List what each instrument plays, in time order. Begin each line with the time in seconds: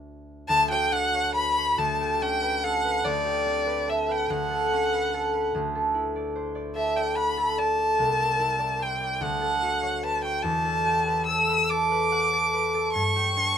Already playing: harp D2 D4 F#4 D5 E5
0.49 harp D2, violin A5
0.70 harp F#4, violin G5
0.92 harp D4, violin F#5
1.14 harp C#5
1.35 harp B4, violin B5
1.57 harp C#5
1.78 harp D2, violin A5
2.00 harp G4
2.21 harp C#4, violin G5
2.42 harp B4
2.63 harp A4, violin F#5
2.84 harp B4
3.05 harp D2, violin D5
3.25 harp G4
3.46 harp C4
3.66 harp B4
3.87 harp A4, violin E5
4.09 harp B4, violin G5
4.30 harp D2, violin F#5
4.51 harp A4
4.72 harp C#4
4.93 harp B4
5.14 harp A4
5.34 harp B4
5.55 harp D2
5.75 harp A4
5.94 harp E4
6.16 harp D5
6.36 harp C5
6.55 harp D5
6.75 harp A4, violin E5
6.96 harp D5, violin G5
7.16 harp F#5, violin B5
7.37 harp A4
7.58 harp D5, violin A5
7.78 harp A4
7.99 harp C2
8.19 harp A#4
8.39 harp E4
8.59 harp D5
8.79 harp C5, violin G5
9.01 harp D5
9.21 harp D2, violin F#5
9.41 harp A4
9.62 harp F#4
9.83 harp C#5
10.03 harp B4, violin A5
10.24 harp C#5, violin G5
10.43 harp E2, violin A5
10.65 harp A4
10.85 harp G4
11.07 harp B4
11.27 harp A4, violin E6
11.49 harp B4
11.69 harp A4, violin D6
11.91 harp B4
12.12 harp F#5
12.33 harp A4
12.53 harp B4
12.74 harp A4
12.93 harp G2, violin C#6
13.16 harp G4
13.37 harp D4